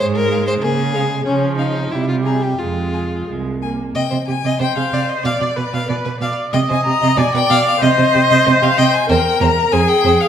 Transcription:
0.00 cello G#2, viola G#3
0.16 violin A#4
0.31 violin F5
0.47 violin C5
0.62 cello C#3, viola A#3, violin G#4
0.94 viola G#3, violin F5
1.26 cello C#3, viola F3, violin C#4
1.58 violin D#4 F5
1.91 cello C3, viola G3, violin E4
2.09 violin F4
2.24 violin G#4 A#5
2.42 violin G4
2.59 cello F2, viola G#3, violin F4
2.93 violin G#5
3.28 cello C2, viola G#3
3.62 viola A#3, violin G#5
3.95 cello C3, violin D#5 G5
4.11 cello C3, violin C5
4.27 cello C3, violin G4 G#5
4.44 cello C3, violin D#5
4.59 cello C3, viola C5, violin C5 G5
4.76 cello C3, violin G#4 F5
4.92 cello C3, violin D5
5.09 violin D#5
5.24 cello B2, violin D5 F5, viola D5
5.41 cello B2, violin D5
5.56 cello B2, viola B4, violin B4
5.73 cello B2, violin F5
5.88 cello B2, viola B4, violin D5
6.05 cello B2, violin B4
6.21 cello B2, viola D5, violin F5
6.53 cello C3, violin D#5 G5, viola D#5
6.70 cello C3, violin C5 G#5
6.85 cello C3, violin G4 A#5
7.01 cello C3, violin D#5
7.16 cello B2, viola D5, violin D5 G#5
7.34 cello B2, violin B4 G5
7.49 cello B2, violin F5
7.66 violin F5
7.80 cello C3, viola C5, violin D#5
7.98 cello C3, violin C5
8.14 cello C3, violin G4
8.29 cello C3, violin D#5
8.47 cello C3, violin C5
8.62 cello C3, violin G4 F5
8.77 cello C3, violin D#5 G5
8.94 violin G#5
9.09 cello E2, viola A#4, violin C5 G5
9.41 cello E2, violin C5 A#5
9.72 cello F2, viola G#4, violin C5 G#5
9.88 violin G5
10.04 cello F2, violin C5
10.21 violin F5

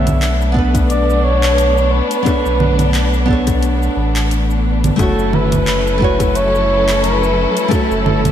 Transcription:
Already playing: sub bass B1, string section A3 B3 D4, nylon-string guitar B3 D4 A4 C#5, flugelhorn E5
0.06 kick, closed hi-hat, low conga, shaker
0.22 clap, closed hi-hat, shaker
0.41 shaker
0.52 nylon-string guitar B3 D4, kick
0.57 nylon-string guitar A4 B4
0.74 kick, closed hi-hat, high bongo, shaker
0.90 flugelhorn D5, closed hi-hat, shaker
1.10 shaker
1.24 flugelhorn C#5
1.43 clap, closed hi-hat, shaker
1.58 closed hi-hat, shaker
1.78 shaker
1.92 flugelhorn B4
2.11 closed hi-hat, shaker
2.23 nylon-string guitar B3 D4, kick, closed hi-hat
2.27 nylon-string guitar A4 C#5, high bongo, shaker
2.45 sub bass B1, shaker
2.60 low conga
2.79 closed hi-hat, low conga, shaker
2.94 clap, closed hi-hat, shaker
3.14 shaker
3.26 nylon-string guitar B3 D4, kick
3.30 nylon-string guitar A4 C#5
3.47 kick, closed hi-hat, high bongo, shaker
3.63 closed hi-hat, shaker
3.82 shaker
3.96 sub bass A1
4.16 clap, closed hi-hat, shaker
4.31 closed hi-hat, shaker
4.50 shaker
4.84 closed hi-hat, low conga, shaker
4.96 sub bass F#1, string section F#3 C#4 E4 A4, nylon-string guitar A3 E4 F#4, kick, closed hi-hat, high bongo, shaker
5.00 flugelhorn A4, nylon-string guitar C#5
5.19 shaker
5.33 flugelhorn B4, low conga
5.51 kick, closed hi-hat, low conga, shaker
5.67 clap, closed hi-hat, shaker
5.87 shaker
5.98 nylon-string guitar A3 E4, kick
6.02 nylon-string guitar F#4 C#5
6.20 kick, closed hi-hat, high bongo, shaker
6.35 flugelhorn C#5, closed hi-hat, shaker
6.55 shaker
6.89 clap, closed hi-hat, shaker
7.04 flugelhorn B4, closed hi-hat, shaker
7.23 shaker
7.57 closed hi-hat, shaker
7.68 nylon-string guitar A3 E4, kick, closed hi-hat, high bongo, shaker
7.72 nylon-string guitar F#4 C#5, flugelhorn A4
7.91 sub bass F#1, shaker
8.06 low conga
8.24 kick, closed hi-hat, low conga, shaker

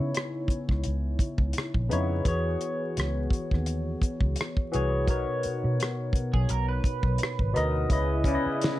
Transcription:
Already playing: tine electric piano C#3 B3 D#4 E4 C#5
0.00 fingered electric bass C#3
0.14 cross-stick, closed hi-hat
0.48 muted fingered electric bass stroke, kick, closed hi-hat
0.69 fingered electric bass C#2, kick, cross-stick
0.84 fingered electric bass C#2, closed hi-hat
1.19 kick, closed hi-hat
1.38 fingered electric bass C#2, kick
1.53 closed hi-hat
1.58 cross-stick
1.74 fingered electric bass A#1, kick
1.89 fingered electric bass F2, tine electric piano C#3 B3 D#4 E4, closed hi-hat
1.93 tine electric piano C#5
2.24 fingered electric bass E2, tine electric piano E3 B3 F#4 G#4, kick, closed hi-hat
2.28 tine electric piano C#5
2.61 closed hi-hat
2.97 fingered electric bass C#2, cross-stick, closed hi-hat
3.30 kick, closed hi-hat
3.51 fingered electric bass D#2, kick, cross-stick
3.66 closed hi-hat
4.01 muted fingered electric bass stroke, kick, closed hi-hat
4.21 fingered electric bass C#2, kick
4.36 closed hi-hat
4.41 cross-stick
4.57 kick
4.71 fingered electric bass C2, tine electric piano E3 B3 F#4 G#4, closed hi-hat
4.76 tine electric piano C#5
5.06 fingered electric bass B1, tine electric piano B2 B3 D#4 A#4, kick, closed hi-hat
5.10 tine electric piano C#5
5.43 muted fingered electric bass stroke, closed hi-hat
5.64 fingered electric bass B2
5.80 cross-stick, closed hi-hat
6.13 muted fingered electric bass stroke, kick, closed hi-hat
6.33 fingered electric bass B1, clean electric guitar G#4, kick
6.49 fingered electric bass B1, clean electric guitar A#4, closed hi-hat
6.69 clean electric guitar B4
6.84 kick, closed hi-hat
7.03 fingered electric bass B1, kick
7.18 closed hi-hat
7.23 cross-stick
7.39 fingered electric bass G#1, kick
7.53 fingered electric bass D2, tine electric piano B2 B3 D#4 A#4, closed hi-hat
7.57 tine electric piano D#5, cross-stick
7.89 fingered electric bass C#2, tine electric piano C#3 C#4 E4 B4, horn section C#3 B3 E4, kick, closed hi-hat
7.93 tine electric piano D#5
8.24 tine electric piano C#3 C#4 E4 B4, kick, closed hi-hat
8.28 tine electric piano D5
8.35 tine electric piano D#5
8.46 muted fingered electric bass stroke
8.62 snare, closed hi-hat

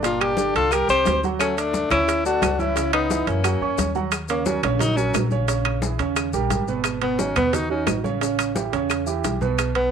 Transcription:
Already playing: upright bass G1
0.02 grand piano A#2 A#3 A#4, tenor saxophone D4 F4, high bongo, high timbale, maracas
0.21 tenor saxophone D4 G4, high conga, high timbale, claves
0.37 grand piano D3 D4 D5, high bongo, high conga, maracas
0.54 upright bass C2, tenor saxophone F4 A4, high conga, high timbale, maracas
0.71 grand piano G3 G4 G5, tenor saxophone G4 A#4, high bongo, high conga, high timbale, claves, maracas
0.88 upright bass C2, grand piano C4 C5 C6, tenor saxophone G4 C5, high conga, maracas
1.05 upright bass D2, high bongo, low bongo, high conga, high timbale, low timbale, maracas
1.23 grand piano F#3 F#4 F#5, high bongo, high conga, maracas
1.39 tenor saxophone A3 C#4, high bongo, high conga, high timbale, claves, maracas
1.57 grand piano A3 A4 A5, tenor saxophone A3 D4, high conga, high timbale, maracas
1.73 high bongo, high conga, maracas
1.90 upright bass D2, grand piano C#4 C#5 C#6, tenor saxophone C#4 E4, high conga, low conga, high timbale, claves, maracas
2.08 high bongo, high conga, high timbale, maracas
2.24 grand piano A3 A4 A5, tenor saxophone D4 F#4, high conga, maracas
2.42 upright bass C#2, high bongo, low bongo, high conga, high timbale, low timbale, claves, maracas
2.59 grand piano E3 E4 E5, tenor saxophone C#4 E4, high conga, maracas
2.76 grand piano C#3 C#4 C#5, high bongo, high conga, high timbale, maracas
2.93 tenor saxophone B3 D#4, high bongo, high conga, high timbale, claves
3.10 grand piano E3 E4 E5, high bongo, high conga, maracas
3.27 upright bass F#2, tenor saxophone A#3 C#4, high bongo, high conga, high timbale, maracas
3.44 grand piano F#3 F#4 F#5, high bongo, high conga, high timbale, claves, maracas
3.60 upright bass E2, grand piano C#4 C#5 C#6, high conga
3.78 upright bass D#2, high bongo, low bongo, high conga, high timbale, maracas
3.95 grand piano F#3 F#4 F#5, high bongo, high conga, maracas
4.12 high bongo, high conga, high timbale, claves, maracas
4.28 grand piano C#3 C#4 C#5, tenor saxophone A#3, high conga, high timbale, maracas
4.46 grand piano F#3 F#4 A#4, tenor saxophone C#4, high bongo, high conga, maracas
4.63 upright bass A#1, grand piano C#3 C#4 C#5, tenor saxophone A#3, high conga, low conga, high timbale, claves, maracas
4.79 grand piano F#3 F#4 A#4, tenor saxophone D#4, high bongo, high conga, low conga, high timbale, maracas
4.97 grand piano F#3 F#4 A#4, tenor saxophone C#4, high conga, maracas
5.14 upright bass A#1, high bongo, low bongo, high conga, high timbale, low timbale, claves, maracas
5.31 grand piano C#3 C#4 C#5, high conga, maracas
5.48 grand piano C#3 C#4 C#5, high bongo, high timbale, maracas
5.65 high bongo, high conga, high timbale, claves
5.82 grand piano E3 E4 G#4, high bongo, high conga, maracas
5.98 upright bass D#2, grand piano C#3 C#4 C#5, high bongo, high conga, high timbale, maracas
6.16 high bongo, high conga, high timbale, claves, maracas
6.33 upright bass A#1, grand piano G3 G4 A#4, high conga, maracas
6.50 upright bass G#1, high bongo, low bongo, high conga, high timbale, maracas
6.68 grand piano B2 B3 B4, high bongo, maracas
6.84 high bongo, high conga, high timbale, claves, maracas
7.01 grand piano B2 B3 B4, tenor saxophone B3, high conga, high timbale
7.18 grand piano D#3 D#4 F#4, tenor saxophone C#4, high bongo, high conga, maracas
7.36 upright bass D#2, grand piano B2 B3 B4, tenor saxophone B3, high conga, low conga, high timbale, claves, maracas
7.53 grand piano D#3 D#4 F#4, tenor saxophone D#4, high bongo, high conga, low conga, high timbale, maracas
7.70 grand piano D#3 D#4 F#4, tenor saxophone C#4, high conga
7.87 upright bass A1, high bongo, low bongo, high conga, high timbale, low timbale, claves, maracas
8.04 grand piano C#3 C#4 C#5, high conga, maracas
8.21 grand piano C#3 C#4 C#5, high bongo, high conga, high timbale, maracas
8.39 high bongo, high conga, high timbale, claves, maracas
8.55 grand piano E3 E4 G4, high bongo, high conga, maracas
8.72 upright bass E2, grand piano C#3 C#4 C#5, high bongo, high conga, high timbale, maracas
8.90 high bongo, high conga, high timbale, claves, maracas
9.06 grand piano E3 E4 G4, high conga, maracas
9.24 upright bass B1, high bongo, low bongo, high conga, high timbale, maracas
9.41 grand piano B2 B3 B4, high bongo, high conga, maracas
9.58 high bongo, high timbale, claves, maracas
9.75 grand piano B2 B3 B4, tenor saxophone B3, high conga, high timbale

